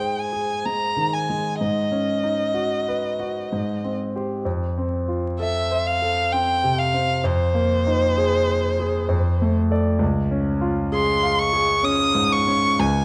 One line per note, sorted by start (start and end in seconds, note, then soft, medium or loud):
0.00 1.56 G#2 soft
0.00 0.66 G#3 soft
0.00 1.62 D#4 soft
0.00 0.20 G#4 soft
0.00 0.52 C5 soft
0.00 0.20 G5 medium
0.19 0.67 G#5 medium
0.33 0.84 G#4 soft
0.66 1.16 G#3 soft
0.66 1.15 A#5 medium
0.96 1.47 D#3 soft
1.13 1.60 G#5 medium
1.30 1.60 G#3 soft
1.60 3.47 G#2 soft
1.60 3.94 D#5 medium
1.91 2.41 C#4 soft
2.24 2.74 D#4 soft
2.54 3.06 F#4 soft
2.88 3.39 B4 soft
3.20 3.51 F#4 soft
3.53 4.43 G#2 soft
3.84 4.33 C4 soft
4.15 4.43 G4 soft
4.15 4.43 C5 soft
4.45 7.20 F2 soft
4.78 5.28 C4 soft
5.08 5.59 F4 soft
5.40 5.89 A4 soft
5.40 5.88 E5 medium
5.71 6.20 C5 soft
5.87 6.34 F5 medium
6.02 6.51 A4 soft
6.32 6.81 C4 soft
6.32 6.80 G5 medium
6.64 7.12 C3 soft
6.79 7.27 F5 medium
6.94 7.25 C4 soft
7.24 9.06 F2 medium
7.24 9.56 C5 medium
7.54 8.05 A#3 soft
7.87 8.37 D#4 soft
8.18 8.68 G#4 medium
8.49 8.99 C5 soft
8.80 9.10 G#4 soft
9.09 9.98 F2 medium
9.42 9.90 A3 soft
9.71 9.98 A4 soft
9.71 9.99 D5 soft
9.99 12.75 C#2 medium
10.31 10.80 C#4 soft
10.61 11.11 F4 medium
10.92 11.42 G#4 medium
10.92 11.40 C6 medium
11.23 11.73 F5 medium
11.39 11.86 C#6 medium
11.53 12.04 G#4 soft
11.83 12.35 C#4 medium
11.83 12.34 D#6 loud
12.15 12.67 G#2 medium
12.32 12.81 C#6 medium
12.47 12.80 C#4 medium
12.79 13.05 C#2 medium
12.79 13.05 G#5 medium